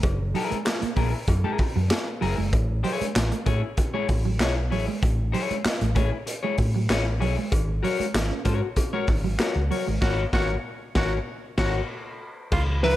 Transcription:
0.03 F#1, kick, closed hi-hat, cowbell
0.20 muted clean electric guitar stroke
0.34 F#3 E4 G#4 A#4, open hi-hat
0.50 G#3, muted fingered electric bass stroke, closed hi-hat
0.65 muted clean electric guitar stroke, snare, clap, closed hi-hat, cowbell
0.81 A#3, muted clean electric guitar stroke, muted fingered electric bass stroke, closed hi-hat
0.96 A#1 A#3 E4 G#4 A#4, kick, open hi-hat
1.14 muted clean electric guitar stroke
1.27 F#2, muted clean electric guitar stroke, kick, closed hi-hat, cowbell
1.44 G#3 E4 G#4 A#4
1.58 muted clean electric guitar stroke, muted fingered electric bass stroke, kick, open hi-hat
1.76 F#2 F#3, muted clean electric guitar stroke
1.90 muted clean electric guitar stroke, snare, clap, closed hi-hat, cowbell
2.07 muted clean electric guitar stroke
2.21 F#1 F#3 E4 G#4 A#4, open hi-hat
2.37 F#1 G#3, muted clean electric guitar stroke
2.53 A1, kick, closed hi-hat
2.70 muted clean electric guitar stroke
2.83 F#3 E4 G#4 C#5, open hi-hat
3.01 G#3, muted fingered electric bass stroke, closed hi-hat
3.16 A1, snare, clap, closed hi-hat
3.32 A3, muted clean electric guitar stroke, closed hi-hat
3.46 A2 A3 E4 G#4 C#5, kick, closed hi-hat
3.63 muted clean electric guitar stroke
3.77 muted clean electric guitar stroke, kick, closed hi-hat
3.94 G#3 E4 G#4 C#5
4.08 A1, muted clean electric guitar stroke, kick, open hi-hat
4.25 F#3, muted clean electric guitar stroke
4.40 B1 E4 G#4 C#5, muted clean electric guitar stroke, snare, clap, closed hi-hat
4.56 muted clean electric guitar stroke
4.70 A1 F#3 E4 G#4 C#5, open hi-hat
4.87 G#3, muted clean electric guitar stroke
5.03 A1, kick, closed hi-hat
5.20 muted clean electric guitar stroke
5.32 F#3 E4 G#4 C#5, open hi-hat
5.51 G#3, muted fingered electric bass stroke, closed hi-hat
5.65 muted fingered electric bass stroke, snare, clap, closed hi-hat
5.80 A1 A3, muted clean electric guitar stroke, closed hi-hat
5.95 A3 E4 G#4 C#5, kick, closed hi-hat
6.12 muted clean electric guitar stroke
6.26 muted clean electric guitar stroke, closed hi-hat
6.43 G#3 E4 G#4 C#5
6.58 A2, muted clean electric guitar stroke, kick, open hi-hat
6.75 F#3, muted clean electric guitar stroke
6.89 A1 E4 G#4 C#5, snare, clap, closed hi-hat
7.06 muted clean electric guitar stroke
7.20 B1 F#3 E4 G#4 C#5, open hi-hat
7.37 G#3, muted clean electric guitar stroke
7.52 G#1, kick, closed hi-hat, cowbell
7.69 muted clean electric guitar stroke
7.83 F#3 F#4 A#4 C#5, open hi-hat
8.00 G#3, muted fingered electric bass stroke, closed hi-hat
8.14 G#1, snare, clap, closed hi-hat, cowbell
8.30 C#4, muted clean electric guitar stroke
8.45 G#2 C#4 F#4 A#4 C#5, kick, closed hi-hat
8.62 muted clean electric guitar stroke
8.76 muted clean electric guitar stroke, kick, closed hi-hat, cowbell
8.93 G#3 F#4 A#4 C#5
9.07 G#1, muted clean electric guitar stroke, kick, open hi-hat
9.24 F#3, muted clean electric guitar stroke
9.39 F#4 A#4 C#5, muted clean electric guitar stroke, snare, clap, closed hi-hat, cowbell
9.56 C#2, muted clean electric guitar stroke
9.71 F#3 F#4 A#4 C#5, open hi-hat
9.87 G#1 G#3, muted clean electric guitar stroke
10.01 G#1 F#4 A#4 C#5, kick, snare, crash
10.33 G#1 F#4 A#4 C#5, kick, snare
10.95 G#1 F#4 A#4 C#5, kick, snare
11.57 G#1 F#4 A#4 C#5, kick, snare, crash
12.52 C#2 F4, kick, crash, cowbell
12.69 muted clean electric guitar stroke
12.83 F3 D#4 E4 F4 B4, open hi-hat

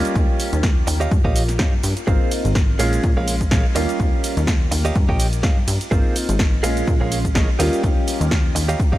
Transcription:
Already playing: G3 A#3 C#4 F4 G4 C#5 D#5 F5
0.05 closed hi-hat, shaker
0.15 D#2, kick, closed hi-hat, shaker
0.40 open hi-hat, shaker
0.53 D#2, closed hi-hat, shaker
0.63 muted clean electric guitar stroke, kick, snare, closed hi-hat, shaker
0.87 D#2, muted clean electric guitar stroke, open hi-hat, shaker
1.00 G4 C#5 D#5 F5, closed hi-hat, shaker
1.11 G2, kick, closed hi-hat, shaker
1.24 A#1 G4 C#5 D#5 F5, kick
1.36 open hi-hat, shaker
1.48 snare, closed hi-hat, shaker
1.59 G2 G4 C#5 D#5 F5, kick, snare, closed hi-hat, shaker
1.83 G2, muted clean electric guitar stroke, open hi-hat, shaker
1.97 closed hi-hat, shaker
2.07 G#1 A#3 C4 D#4 F4 G#4 A#4 C5 F5, kick, closed hi-hat, shaker
2.31 open hi-hat, ride, shaker
2.45 G#1, closed hi-hat, shaker
2.55 muted clean electric guitar stroke, kick, snare, closed hi-hat, shaker
2.79 A#1 G#3 C#4 F4 G#4 A#4 C#5 F5, open hi-hat, ride, shaker
2.93 closed hi-hat, shaker
3.04 A#2, kick, closed hi-hat, shaker
3.17 A#1 G#4 A#4 C#5 F5
3.28 open hi-hat, ride, shaker
3.41 kick, closed hi-hat, shaker
3.51 A#1 G#4 A#4 C#5 F5, kick, snare, closed hi-hat, shaker
3.75 D#2 G3 A#3 C#4 F4 G4 C#5 D#5 F5, open hi-hat, ride, shaker
3.89 closed hi-hat, shaker
4.00 D#2, kick, closed hi-hat, shaker
4.24 open hi-hat, ride, shaker
4.37 D#2, closed hi-hat, shaker
4.47 muted clean electric guitar stroke, kick, snare, closed hi-hat, shaker
4.71 D#2, muted clean electric guitar stroke, open hi-hat, ride, shaker
4.85 G4 C#5 D#5 F5, closed hi-hat, shaker
4.96 G2, kick, closed hi-hat, shaker
5.09 A#1 G4 C#5 D#5 G5, kick
5.20 open hi-hat, ride, shaker
5.33 closed hi-hat, shaker
5.43 G2 G4 C#5 D#5 F5, kick, snare, closed hi-hat, shaker
5.67 G2, muted clean electric guitar stroke, open hi-hat, ride, shaker
5.81 closed hi-hat, shaker
5.91 G#1 A#3 C4 D#4 F4 G#4 A#4 C5 F5, kick, closed hi-hat, shaker
6.16 open hi-hat, ride, shaker
6.29 G#1, closed hi-hat, shaker
6.39 muted clean electric guitar stroke, kick, snare, closed hi-hat, shaker
6.63 A#1 G#3 C#4 F4 G#4 A#4 C#5 F5, open hi-hat, ride, shaker
6.77 closed hi-hat, shaker
6.87 A#2, kick, closed hi-hat, shaker
7.00 A#1 G#4 A#4 C#5 F5
7.12 open hi-hat, ride, shaker
7.25 kick, closed hi-hat, shaker
7.35 A#1 G#4 A#4 C#5 D#5, kick, snare, closed hi-hat, shaker
7.59 D#2 G3 A#3 C#4 F4 G4 C#5 D#5 F5, open hi-hat, ride, shaker
7.73 closed hi-hat, shaker
7.83 D#2, kick, closed hi-hat, shaker
8.08 open hi-hat, ride, shaker
8.21 D#2, closed hi-hat, shaker
8.31 muted clean electric guitar stroke, kick, snare, closed hi-hat, shaker
8.55 D#2, muted clean electric guitar stroke, open hi-hat, ride, shaker
8.68 G4 C#5 D#5 F5, closed hi-hat, shaker
8.80 kick, closed hi-hat, shaker
8.92 G4 C#5 D#5 F5, kick

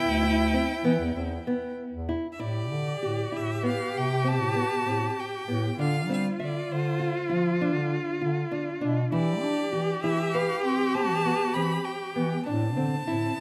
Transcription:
Already playing: E4 G5
0.07 D2
0.23 E4
0.54 C4
0.84 E3 B3
1.00 E2
1.14 E2 C4
1.47 B3
1.92 E2
2.09 E4
2.33 E5
2.39 A2 E4 G4 D5
2.71 D3
3.02 A2 G4
3.32 A2 E4
3.37 E5
3.63 B3 F5
3.95 C3 G5
4.24 C4 A5
4.41 A2
4.55 B3
4.86 A2 C4
5.20 G5
5.47 A2 B3
5.78 D3 D4 F4 F5
6.08 G3 C4
6.13 F5
6.38 D3 E5
6.44 D5
6.69 D3 C5
7.00 F4
7.29 F3 F4
7.61 D4
7.76 D3
8.21 D3 F4
8.51 D4
8.81 B2 D4
9.11 E3 E4 G4 D5
9.42 D4
9.72 E3 G4
10.03 E3 E4 E5
10.34 B4 F5
10.64 C4 G5
10.95 C4 A5
11.10 E3
11.25 B3
11.54 E3 C4 B5
11.85 G5
12.16 E3 B3
12.45 A2 C4 D4 A5
12.77 D3 C4
13.06 A2 E4
13.37 A2

